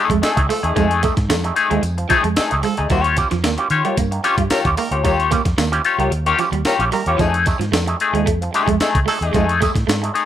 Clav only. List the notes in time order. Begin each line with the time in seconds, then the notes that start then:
0.36 A3 D#4 G#4
0.49 F3
0.63 A3 D#4 G#4
0.76 F3
1.03 A3 D#4 G#4
1.44 A3 D#4 G#4
1.71 F3
1.84 D#4 G#4
1.98 F3
2.10 A3 D#4 G#4
2.51 A3 D#4 G#4
2.63 F3
2.77 A3 D#4 G#4
2.90 D#3 A#3
3.05 F4 G4
3.17 C#4 F4 G4
3.58 C#4 F4 G4
3.85 D#3 A#3
3.97 F4 G4
4.11 D#3 A#3
4.23 C#4 F4 G4
4.65 C#4 F4 G4
4.77 D#3 A#3
4.91 C#4 F4 G4
5.04 D#3 A#3
5.19 F4 G4
5.31 C#4 F4 G4
5.72 C#4 F4 G4
5.99 D#3 A#3
6.11 F4 G4
6.26 D#3 A#3
6.39 C#4 F4 G4
6.80 C#4 F4 G4
6.93 D#3 A#3
7.06 C#4 F4 G4
7.19 F3
7.34 D#4 G#4
7.46 A3 D#4 G#4
7.87 A3 D#4 G#4
8.15 F3
8.27 D#4 G#4
8.42 F3
8.54 A3 D#4 G#4
9.07 A3 D#4 G#4
9.35 F3
9.49 D#4 G#4
9.61 A3 D#4 G#4
10.02 A3 D#4 G#4